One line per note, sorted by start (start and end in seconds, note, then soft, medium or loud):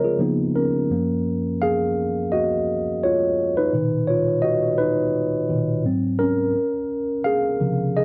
0.00 0.15 C#3 medium
0.00 0.15 F3 medium
0.00 0.16 G#3 medium
0.00 0.16 C4 medium
0.00 0.04 F4 medium
0.00 0.21 A#4 medium
0.00 0.21 C5 soft
0.00 0.21 C#5 medium
0.00 0.21 D#5 medium
0.04 0.37 F4 soft
0.04 0.37 G#4 medium
0.19 0.89 C#3 medium
0.19 0.90 F3 medium
0.19 0.90 A#3 medium
0.19 0.90 B3 medium
0.19 0.91 D#4 medium
0.56 1.57 C#4 medium
0.56 1.64 A#4 medium
0.90 1.92 F#2 medium
0.90 1.92 F3 soft
0.90 1.92 A#3 medium
1.62 2.28 G#4 medium
1.62 2.33 F5 loud
2.32 2.98 F#4 medium
2.32 3.04 D#5 medium
3.04 3.53 F4 medium
3.04 3.58 C#5 medium
3.57 4.05 D#4 medium
3.57 4.09 B4 medium
3.73 4.21 A#2 medium
3.73 4.20 B2 medium
3.73 4.21 D#3 medium
4.07 4.41 F4 medium
4.07 4.44 C#5 medium
4.42 4.76 F#4 medium
4.42 4.78 D#5 loud
4.78 5.81 D#4 medium
4.78 5.80 B4 medium
5.50 5.81 A#2 medium
5.50 5.81 B2 medium
5.50 5.81 D#3 soft
5.85 6.51 G#2 medium
5.85 6.52 F#3 medium
5.85 6.52 C4 medium
6.19 7.21 C#4 medium
6.19 7.21 A#4 medium
7.24 7.92 G#4 medium
7.24 7.97 F5 loud
7.60 8.05 C3 medium
7.60 8.05 C#3 medium
7.60 8.05 F3 medium
7.97 8.05 G#4 medium
7.97 8.05 D#5 loud